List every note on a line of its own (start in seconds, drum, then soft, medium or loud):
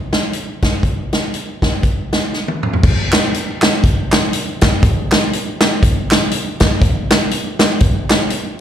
0.13 snare medium
0.13 closed hi-hat medium
0.33 closed hi-hat medium
0.62 kick medium
0.62 snare medium
0.62 closed hi-hat medium
0.83 kick loud
0.83 closed hi-hat medium
1.13 snare medium
1.13 closed hi-hat medium
1.34 closed hi-hat medium
1.62 kick medium
1.62 snare medium
1.62 closed hi-hat medium
1.83 kick medium
1.83 closed hi-hat medium
2.13 snare medium
2.13 closed hi-hat medium
2.33 snare soft
2.48 high tom medium
2.63 mid tom medium
2.73 floor tom medium
2.83 kick loud
2.83 crash medium
3.12 snare loud
3.12 clap loud
3.12 closed hi-hat medium
3.34 closed hi-hat medium
3.62 snare loud
3.62 clap medium
3.62 closed hi-hat medium
3.84 kick loud
3.84 closed hi-hat medium
4.12 snare loud
4.12 clap medium
4.12 closed hi-hat medium
4.33 closed hi-hat loud
4.61 kick medium
4.61 snare loud
4.61 clap medium
4.61 closed hi-hat medium
4.83 kick loud
4.83 closed hi-hat medium
5.12 snare loud
5.12 clap loud
5.12 closed hi-hat medium
5.33 closed hi-hat medium
5.61 snare loud
5.61 clap loud
5.61 closed hi-hat medium
5.83 kick loud
5.83 closed hi-hat medium
6.11 snare loud
6.11 clap loud
6.11 closed hi-hat medium
6.31 closed hi-hat medium
6.60 kick medium
6.60 snare loud
6.60 clap medium
6.60 closed hi-hat medium
6.81 kick loud
6.81 closed hi-hat medium
7.10 snare loud
7.10 clap loud
7.10 closed hi-hat medium
7.31 closed hi-hat medium
7.59 snare loud
7.59 clap medium
7.59 closed hi-hat medium
7.80 kick loud
7.80 closed hi-hat medium
8.10 snare loud
8.10 clap medium
8.10 closed hi-hat medium
8.30 closed hi-hat medium